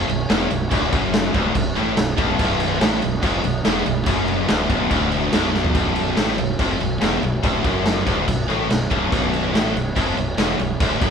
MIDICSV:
0, 0, Header, 1, 5, 480
1, 0, Start_track
1, 0, Tempo, 420168
1, 819, Time_signature, 4, 2, 24, 8
1, 12683, End_track
2, 0, Start_track
2, 0, Title_t, "Analog synth pad"
2, 0, Program_c, 0, 89
2, 0, Note_on_c, 0, 59, 74
2, 0, Note_on_c, 0, 66, 66
2, 0, Note_on_c, 0, 73, 86
2, 2694, Note_off_c, 0, 73, 0
2, 2727, Note_on_c, 0, 75, 75
2, 6520, Note_off_c, 0, 66, 0
2, 6522, Note_off_c, 0, 59, 0
2, 6528, Note_off_c, 0, 75, 0
2, 6563, Note_on_c, 0, 59, 76
2, 6565, Note_on_c, 0, 73, 81
2, 6569, Note_on_c, 0, 66, 67
2, 12683, Note_off_c, 0, 59, 0
2, 12683, Note_off_c, 0, 66, 0
2, 12683, Note_off_c, 0, 73, 0
2, 12683, End_track
3, 0, Start_track
3, 0, Title_t, "Overdriven electric guitar"
3, 0, Program_c, 1, 29
3, 103, Note_on_c, 1, 35, 71
3, 293, Note_off_c, 1, 35, 0
3, 342, Note_on_c, 1, 40, 102
3, 573, Note_off_c, 1, 40, 0
3, 577, Note_on_c, 1, 35, 76
3, 770, Note_off_c, 1, 35, 0
3, 821, Note_on_c, 1, 38, 102
3, 1052, Note_off_c, 1, 38, 0
3, 1061, Note_on_c, 1, 42, 115
3, 1531, Note_off_c, 1, 42, 0
3, 1537, Note_on_c, 1, 38, 112
3, 1769, Note_off_c, 1, 38, 0
3, 1781, Note_on_c, 1, 35, 85
3, 1970, Note_off_c, 1, 35, 0
3, 2012, Note_on_c, 1, 45, 86
3, 2246, Note_off_c, 1, 45, 0
3, 2255, Note_on_c, 1, 35, 73
3, 2446, Note_off_c, 1, 35, 0
3, 2485, Note_on_c, 1, 35, 115
3, 2722, Note_off_c, 1, 35, 0
3, 2734, Note_on_c, 1, 35, 100
3, 3205, Note_off_c, 1, 35, 0
3, 3209, Note_on_c, 1, 45, 109
3, 3441, Note_off_c, 1, 45, 0
3, 3445, Note_on_c, 1, 35, 81
3, 3640, Note_off_c, 1, 35, 0
3, 3689, Note_on_c, 1, 41, 114
3, 3923, Note_off_c, 1, 41, 0
3, 3929, Note_on_c, 1, 35, 71
3, 4122, Note_off_c, 1, 35, 0
3, 4166, Note_on_c, 1, 40, 103
3, 4401, Note_off_c, 1, 40, 0
3, 4409, Note_on_c, 1, 35, 74
3, 4601, Note_off_c, 1, 35, 0
3, 4648, Note_on_c, 1, 42, 122
3, 5116, Note_off_c, 1, 42, 0
3, 5120, Note_on_c, 1, 38, 114
3, 5358, Note_off_c, 1, 38, 0
3, 5364, Note_on_c, 1, 35, 108
3, 5599, Note_off_c, 1, 35, 0
3, 5606, Note_on_c, 1, 38, 114
3, 6080, Note_off_c, 1, 38, 0
3, 6092, Note_on_c, 1, 35, 101
3, 6547, Note_off_c, 1, 35, 0
3, 6560, Note_on_c, 1, 35, 104
3, 7035, Note_off_c, 1, 35, 0
3, 7039, Note_on_c, 1, 45, 105
3, 7278, Note_off_c, 1, 45, 0
3, 7288, Note_on_c, 1, 35, 71
3, 7481, Note_off_c, 1, 35, 0
3, 7534, Note_on_c, 1, 41, 102
3, 7765, Note_off_c, 1, 41, 0
3, 7771, Note_on_c, 1, 35, 68
3, 7963, Note_off_c, 1, 35, 0
3, 8007, Note_on_c, 1, 40, 93
3, 8242, Note_off_c, 1, 40, 0
3, 8249, Note_on_c, 1, 35, 71
3, 8442, Note_off_c, 1, 35, 0
3, 8483, Note_on_c, 1, 38, 107
3, 8718, Note_off_c, 1, 38, 0
3, 8722, Note_on_c, 1, 42, 109
3, 9201, Note_off_c, 1, 42, 0
3, 9211, Note_on_c, 1, 38, 97
3, 9445, Note_off_c, 1, 38, 0
3, 9457, Note_on_c, 1, 35, 78
3, 9648, Note_off_c, 1, 35, 0
3, 9691, Note_on_c, 1, 45, 92
3, 9926, Note_off_c, 1, 45, 0
3, 9940, Note_on_c, 1, 35, 76
3, 10130, Note_off_c, 1, 35, 0
3, 10179, Note_on_c, 1, 35, 109
3, 10400, Note_off_c, 1, 35, 0
3, 10414, Note_on_c, 1, 35, 104
3, 10889, Note_off_c, 1, 35, 0
3, 10901, Note_on_c, 1, 45, 112
3, 11133, Note_off_c, 1, 45, 0
3, 11146, Note_on_c, 1, 35, 77
3, 11334, Note_off_c, 1, 35, 0
3, 11387, Note_on_c, 1, 41, 110
3, 11615, Note_off_c, 1, 41, 0
3, 11620, Note_on_c, 1, 35, 72
3, 11812, Note_off_c, 1, 35, 0
3, 11860, Note_on_c, 1, 40, 105
3, 12094, Note_off_c, 1, 40, 0
3, 12108, Note_on_c, 1, 35, 75
3, 12297, Note_off_c, 1, 35, 0
3, 12344, Note_on_c, 1, 38, 101
3, 12576, Note_off_c, 1, 38, 0
3, 12581, Note_on_c, 1, 42, 104
3, 12683, Note_off_c, 1, 42, 0
3, 12683, End_track
4, 0, Start_track
4, 0, Title_t, "Fingered electric bass"
4, 0, Program_c, 2, 33
4, 107, Note_on_c, 2, 23, 78
4, 326, Note_off_c, 2, 23, 0
4, 345, Note_on_c, 2, 28, 97
4, 565, Note_off_c, 2, 28, 0
4, 593, Note_on_c, 2, 23, 86
4, 809, Note_off_c, 2, 23, 0
4, 821, Note_on_c, 2, 26, 116
4, 1043, Note_off_c, 2, 26, 0
4, 1062, Note_on_c, 2, 30, 92
4, 1505, Note_off_c, 2, 30, 0
4, 1538, Note_on_c, 2, 26, 98
4, 1760, Note_off_c, 2, 26, 0
4, 1774, Note_on_c, 2, 23, 83
4, 1997, Note_off_c, 2, 23, 0
4, 2011, Note_on_c, 2, 33, 91
4, 2235, Note_off_c, 2, 33, 0
4, 2253, Note_on_c, 2, 23, 85
4, 2476, Note_off_c, 2, 23, 0
4, 2492, Note_on_c, 2, 23, 97
4, 2715, Note_off_c, 2, 23, 0
4, 2736, Note_on_c, 2, 23, 98
4, 3180, Note_off_c, 2, 23, 0
4, 3219, Note_on_c, 2, 33, 106
4, 3439, Note_off_c, 2, 33, 0
4, 3459, Note_on_c, 2, 23, 82
4, 3679, Note_off_c, 2, 23, 0
4, 3691, Note_on_c, 2, 29, 106
4, 3914, Note_off_c, 2, 29, 0
4, 3939, Note_on_c, 2, 23, 91
4, 4158, Note_off_c, 2, 23, 0
4, 4181, Note_on_c, 2, 28, 94
4, 4399, Note_off_c, 2, 28, 0
4, 4416, Note_on_c, 2, 23, 83
4, 4637, Note_off_c, 2, 23, 0
4, 4646, Note_on_c, 2, 30, 113
4, 5094, Note_off_c, 2, 30, 0
4, 5137, Note_on_c, 2, 26, 101
4, 5356, Note_off_c, 2, 26, 0
4, 5373, Note_on_c, 2, 23, 109
4, 5594, Note_off_c, 2, 23, 0
4, 5611, Note_on_c, 2, 26, 99
4, 6056, Note_off_c, 2, 26, 0
4, 6089, Note_on_c, 2, 23, 85
4, 6536, Note_off_c, 2, 23, 0
4, 6568, Note_on_c, 2, 23, 104
4, 7015, Note_off_c, 2, 23, 0
4, 7059, Note_on_c, 2, 33, 96
4, 7278, Note_off_c, 2, 33, 0
4, 7294, Note_on_c, 2, 23, 76
4, 7516, Note_off_c, 2, 23, 0
4, 7534, Note_on_c, 2, 29, 86
4, 7756, Note_off_c, 2, 29, 0
4, 7782, Note_on_c, 2, 23, 89
4, 8000, Note_off_c, 2, 23, 0
4, 8011, Note_on_c, 2, 28, 95
4, 8235, Note_off_c, 2, 28, 0
4, 8258, Note_on_c, 2, 23, 85
4, 8478, Note_off_c, 2, 23, 0
4, 8494, Note_on_c, 2, 26, 102
4, 8717, Note_off_c, 2, 26, 0
4, 8738, Note_on_c, 2, 30, 104
4, 9182, Note_off_c, 2, 30, 0
4, 9218, Note_on_c, 2, 26, 95
4, 9439, Note_off_c, 2, 26, 0
4, 9459, Note_on_c, 2, 23, 80
4, 9680, Note_off_c, 2, 23, 0
4, 9704, Note_on_c, 2, 33, 99
4, 9923, Note_off_c, 2, 33, 0
4, 9944, Note_on_c, 2, 23, 81
4, 10163, Note_off_c, 2, 23, 0
4, 10179, Note_on_c, 2, 23, 95
4, 10401, Note_off_c, 2, 23, 0
4, 10421, Note_on_c, 2, 23, 99
4, 10866, Note_off_c, 2, 23, 0
4, 10904, Note_on_c, 2, 33, 101
4, 11124, Note_off_c, 2, 33, 0
4, 11138, Note_on_c, 2, 23, 84
4, 11362, Note_off_c, 2, 23, 0
4, 11387, Note_on_c, 2, 29, 99
4, 11607, Note_off_c, 2, 29, 0
4, 11620, Note_on_c, 2, 23, 83
4, 11844, Note_off_c, 2, 23, 0
4, 11853, Note_on_c, 2, 28, 97
4, 12080, Note_off_c, 2, 28, 0
4, 12106, Note_on_c, 2, 23, 84
4, 12327, Note_off_c, 2, 23, 0
4, 12342, Note_on_c, 2, 26, 101
4, 12566, Note_off_c, 2, 26, 0
4, 12583, Note_on_c, 2, 30, 94
4, 12683, Note_off_c, 2, 30, 0
4, 12683, End_track
5, 0, Start_track
5, 0, Title_t, "Drums"
5, 108, Note_on_c, 9, 49, 65
5, 222, Note_off_c, 9, 49, 0
5, 337, Note_on_c, 9, 49, 81
5, 341, Note_on_c, 9, 38, 125
5, 452, Note_off_c, 9, 49, 0
5, 455, Note_off_c, 9, 38, 0
5, 579, Note_on_c, 9, 49, 62
5, 693, Note_off_c, 9, 49, 0
5, 812, Note_on_c, 9, 49, 88
5, 819, Note_on_c, 9, 36, 107
5, 927, Note_off_c, 9, 49, 0
5, 933, Note_off_c, 9, 36, 0
5, 1059, Note_on_c, 9, 36, 116
5, 1059, Note_on_c, 9, 49, 72
5, 1173, Note_off_c, 9, 36, 0
5, 1173, Note_off_c, 9, 49, 0
5, 1297, Note_on_c, 9, 49, 81
5, 1300, Note_on_c, 9, 38, 122
5, 1411, Note_off_c, 9, 49, 0
5, 1414, Note_off_c, 9, 38, 0
5, 1534, Note_on_c, 9, 49, 63
5, 1537, Note_on_c, 9, 36, 100
5, 1649, Note_off_c, 9, 49, 0
5, 1651, Note_off_c, 9, 36, 0
5, 1770, Note_on_c, 9, 49, 81
5, 1775, Note_on_c, 9, 36, 95
5, 1884, Note_off_c, 9, 49, 0
5, 1889, Note_off_c, 9, 36, 0
5, 2015, Note_on_c, 9, 49, 60
5, 2129, Note_off_c, 9, 49, 0
5, 2250, Note_on_c, 9, 49, 86
5, 2253, Note_on_c, 9, 38, 117
5, 2364, Note_off_c, 9, 49, 0
5, 2368, Note_off_c, 9, 38, 0
5, 2489, Note_on_c, 9, 49, 63
5, 2492, Note_on_c, 9, 36, 112
5, 2603, Note_off_c, 9, 49, 0
5, 2606, Note_off_c, 9, 36, 0
5, 2734, Note_on_c, 9, 36, 110
5, 2735, Note_on_c, 9, 49, 89
5, 2848, Note_off_c, 9, 36, 0
5, 2849, Note_off_c, 9, 49, 0
5, 2970, Note_on_c, 9, 49, 82
5, 3084, Note_off_c, 9, 49, 0
5, 3210, Note_on_c, 9, 49, 92
5, 3214, Note_on_c, 9, 38, 126
5, 3325, Note_off_c, 9, 49, 0
5, 3328, Note_off_c, 9, 38, 0
5, 3449, Note_on_c, 9, 49, 66
5, 3563, Note_off_c, 9, 49, 0
5, 3688, Note_on_c, 9, 36, 102
5, 3688, Note_on_c, 9, 49, 90
5, 3802, Note_off_c, 9, 36, 0
5, 3802, Note_off_c, 9, 49, 0
5, 3927, Note_on_c, 9, 49, 64
5, 4042, Note_off_c, 9, 49, 0
5, 4166, Note_on_c, 9, 49, 78
5, 4169, Note_on_c, 9, 38, 110
5, 4280, Note_off_c, 9, 49, 0
5, 4283, Note_off_c, 9, 38, 0
5, 4407, Note_on_c, 9, 49, 62
5, 4521, Note_off_c, 9, 49, 0
5, 4639, Note_on_c, 9, 49, 97
5, 4644, Note_on_c, 9, 36, 120
5, 4753, Note_off_c, 9, 49, 0
5, 4758, Note_off_c, 9, 36, 0
5, 4886, Note_on_c, 9, 49, 70
5, 5000, Note_off_c, 9, 49, 0
5, 5123, Note_on_c, 9, 49, 80
5, 5126, Note_on_c, 9, 38, 116
5, 5237, Note_off_c, 9, 49, 0
5, 5241, Note_off_c, 9, 38, 0
5, 5366, Note_on_c, 9, 36, 101
5, 5371, Note_on_c, 9, 49, 65
5, 5480, Note_off_c, 9, 36, 0
5, 5485, Note_off_c, 9, 49, 0
5, 5606, Note_on_c, 9, 36, 108
5, 5609, Note_on_c, 9, 49, 82
5, 5721, Note_off_c, 9, 36, 0
5, 5723, Note_off_c, 9, 49, 0
5, 5847, Note_on_c, 9, 49, 59
5, 5961, Note_off_c, 9, 49, 0
5, 6084, Note_on_c, 9, 49, 88
5, 6087, Note_on_c, 9, 38, 115
5, 6198, Note_off_c, 9, 49, 0
5, 6201, Note_off_c, 9, 38, 0
5, 6333, Note_on_c, 9, 38, 64
5, 6447, Note_off_c, 9, 38, 0
5, 6448, Note_on_c, 9, 43, 97
5, 6563, Note_off_c, 9, 43, 0
5, 6564, Note_on_c, 9, 49, 84
5, 6568, Note_on_c, 9, 36, 118
5, 6679, Note_off_c, 9, 49, 0
5, 6682, Note_off_c, 9, 36, 0
5, 6805, Note_on_c, 9, 49, 76
5, 6920, Note_off_c, 9, 49, 0
5, 7047, Note_on_c, 9, 49, 92
5, 7051, Note_on_c, 9, 38, 118
5, 7162, Note_off_c, 9, 49, 0
5, 7165, Note_off_c, 9, 38, 0
5, 7288, Note_on_c, 9, 49, 67
5, 7402, Note_off_c, 9, 49, 0
5, 7530, Note_on_c, 9, 36, 99
5, 7531, Note_on_c, 9, 49, 87
5, 7644, Note_off_c, 9, 36, 0
5, 7646, Note_off_c, 9, 49, 0
5, 7773, Note_on_c, 9, 49, 56
5, 7887, Note_off_c, 9, 49, 0
5, 8012, Note_on_c, 9, 49, 83
5, 8016, Note_on_c, 9, 38, 106
5, 8126, Note_off_c, 9, 49, 0
5, 8130, Note_off_c, 9, 38, 0
5, 8257, Note_on_c, 9, 49, 57
5, 8372, Note_off_c, 9, 49, 0
5, 8494, Note_on_c, 9, 36, 107
5, 8495, Note_on_c, 9, 49, 81
5, 8608, Note_off_c, 9, 36, 0
5, 8609, Note_off_c, 9, 49, 0
5, 8733, Note_on_c, 9, 36, 106
5, 8735, Note_on_c, 9, 49, 67
5, 8847, Note_off_c, 9, 36, 0
5, 8849, Note_off_c, 9, 49, 0
5, 8972, Note_on_c, 9, 49, 80
5, 8976, Note_on_c, 9, 38, 110
5, 9087, Note_off_c, 9, 49, 0
5, 9090, Note_off_c, 9, 38, 0
5, 9216, Note_on_c, 9, 36, 100
5, 9222, Note_on_c, 9, 49, 66
5, 9330, Note_off_c, 9, 36, 0
5, 9336, Note_off_c, 9, 49, 0
5, 9458, Note_on_c, 9, 36, 99
5, 9464, Note_on_c, 9, 49, 83
5, 9572, Note_off_c, 9, 36, 0
5, 9578, Note_off_c, 9, 49, 0
5, 9709, Note_on_c, 9, 49, 59
5, 9823, Note_off_c, 9, 49, 0
5, 9944, Note_on_c, 9, 49, 78
5, 9947, Note_on_c, 9, 38, 108
5, 10058, Note_off_c, 9, 49, 0
5, 10061, Note_off_c, 9, 38, 0
5, 10180, Note_on_c, 9, 36, 104
5, 10187, Note_on_c, 9, 49, 58
5, 10295, Note_off_c, 9, 36, 0
5, 10301, Note_off_c, 9, 49, 0
5, 10422, Note_on_c, 9, 36, 113
5, 10432, Note_on_c, 9, 49, 81
5, 10536, Note_off_c, 9, 36, 0
5, 10546, Note_off_c, 9, 49, 0
5, 10665, Note_on_c, 9, 49, 69
5, 10780, Note_off_c, 9, 49, 0
5, 10911, Note_on_c, 9, 49, 79
5, 10914, Note_on_c, 9, 38, 115
5, 11025, Note_off_c, 9, 49, 0
5, 11029, Note_off_c, 9, 38, 0
5, 11155, Note_on_c, 9, 49, 64
5, 11269, Note_off_c, 9, 49, 0
5, 11383, Note_on_c, 9, 36, 103
5, 11389, Note_on_c, 9, 49, 90
5, 11497, Note_off_c, 9, 36, 0
5, 11503, Note_off_c, 9, 49, 0
5, 11623, Note_on_c, 9, 49, 59
5, 11738, Note_off_c, 9, 49, 0
5, 11857, Note_on_c, 9, 49, 85
5, 11861, Note_on_c, 9, 38, 115
5, 11972, Note_off_c, 9, 49, 0
5, 11975, Note_off_c, 9, 38, 0
5, 12102, Note_on_c, 9, 49, 61
5, 12217, Note_off_c, 9, 49, 0
5, 12340, Note_on_c, 9, 49, 87
5, 12343, Note_on_c, 9, 36, 122
5, 12454, Note_off_c, 9, 49, 0
5, 12457, Note_off_c, 9, 36, 0
5, 12584, Note_on_c, 9, 36, 122
5, 12590, Note_on_c, 9, 49, 72
5, 12683, Note_off_c, 9, 36, 0
5, 12683, Note_off_c, 9, 49, 0
5, 12683, End_track
0, 0, End_of_file